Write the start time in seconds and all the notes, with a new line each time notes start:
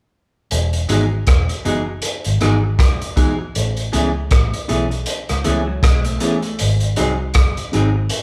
0.51 E1, closed hi-hat
0.73 closed hi-hat
0.89 G#1 E3 G#3 B3 D#4 F#4 G#4, closed hi-hat
1.27 E1, kick, cross-stick, closed hi-hat
1.49 F#4 G#4, closed hi-hat
1.65 F#1 E3 G#3 B3 D#4 F#4 G#4, closed hi-hat
1.87 muted clean electric guitar stroke
2.02 closed hi-hat
2.24 G#1, closed hi-hat
2.41 G#1 E3 G#3 B3 D#4 F#4 G#4, cross-stick, closed hi-hat
2.79 F#1, kick, cross-stick, closed hi-hat
3.02 closed hi-hat
3.16 E3 G#3 B3 D#4 F#4 G#4, kick, closed hi-hat
3.39 muted clean electric guitar stroke
3.55 A1, closed hi-hat
3.77 closed hi-hat
3.92 C#2 E3 A3 B3 C#4 E4 G#4, closed hi-hat
4.31 A1, kick, cross-stick, closed hi-hat
4.53 E4 G#4, closed hi-hat
4.68 B1 E3 A3 B3 C#4 E4 G#4, closed hi-hat
4.91 muted clean electric guitar stroke, closed hi-hat
5.06 closed hi-hat
5.29 C#2, cross-stick, closed hi-hat
5.44 C#2 E3 A3 B3 C#4 E4 G#4, closed hi-hat
5.67 F#3
5.83 B1 G#3, kick, cross-stick, closed hi-hat
6.05 A3, closed hi-hat
6.20 E3 A3 B3 C#4 E4 G#4, closed hi-hat
6.42 muted clean electric guitar stroke, closed hi-hat
6.59 G#1, closed hi-hat
6.80 closed hi-hat
6.96 C2 F#3 C4 D#4 F#4 G#4, closed hi-hat
7.34 F#1, kick, cross-stick, closed hi-hat
7.57 F#4 G#4, closed hi-hat
7.72 G#1 F#3 C4 D#4 F#4 G#4, closed hi-hat
7.96 muted clean electric guitar stroke
8.10 closed hi-hat